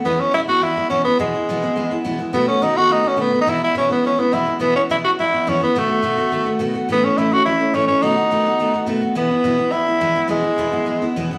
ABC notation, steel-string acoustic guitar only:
X:1
M:4/4
L:1/8
Q:1/4=211
K:E
V:1 name="Steel-string acoustic guitar"
[E,,B,,E,G,B,E] [E,G,B,E] [E,,B,,E,G,B,E] [E,G,B,E] [E,G,B,E] [E,G,B,E] [E,,B,,E,G,B,E] [E,G,E] | [E,,B,,E,G,B,E] [E,G,B,E] [E,,B,,E,G,B,E] [E,G,B,E] [E,G,B,E] [E,G,B,E] [E,,B,,E,G,B,E] [E,G,B,E] | [B,,D,A,B,F] [A,B,F] [B,,D,A,B,F] [A,B,F] [D,A,B,F] [A,B,F] [B,,D,A,B,F] [A,B,F] | [E,,B,,E,G,B,E] [E,G,B,E] [E,,B,,E,G,B,E] [E,G,B,E] [E,G,B,E] [E,G,B,E] [E,,B,,E,G,B,E] [E,G,B,E] |
[E,,B,,E,G,B,E] [E,G,B,E] [E,,B,,E,G,B,E] [E,G,B,E] [E,G,B,E] [E,G,B,E] [E,,B,,E,G,B,E] [E,G,B,E] | [B,,D,A,B,F] [A,B,F] [B,,D,A,B,F] [A,B,F] [D,A,B,F] [A,B,F] [B,,D,A,B,F] [A,B,F] | [A,,E,A,CE] [A,CE] [A,,E,A,CE] [A,CE] [E,A,CE] [A,CE] [A,,E,A,CE] [A,CE] | [B,,D,A,B,F] [A,B,F] [B,,D,A,B,F] [A,B,F] [D,A,B,F] [A,B,F] [B,,D,A,B,F] [A,B,F] |
[E,,B,,E,G,B,E] [E,G,B,E] [E,,B,,E,G,B,E] [E,G,B,E] [E,G,B,E] [E,G,B,E] [E,,B,,E,G,B,E] [E,G,B,E] | [E,,B,,E,G,B,E] [E,G,B,E] [E,,B,,E,G,B,E] [E,G,B,E] [E,G,B,E] [E,G,B,E] [E,,B,,E,G,B,E] [E,G,B,E] |]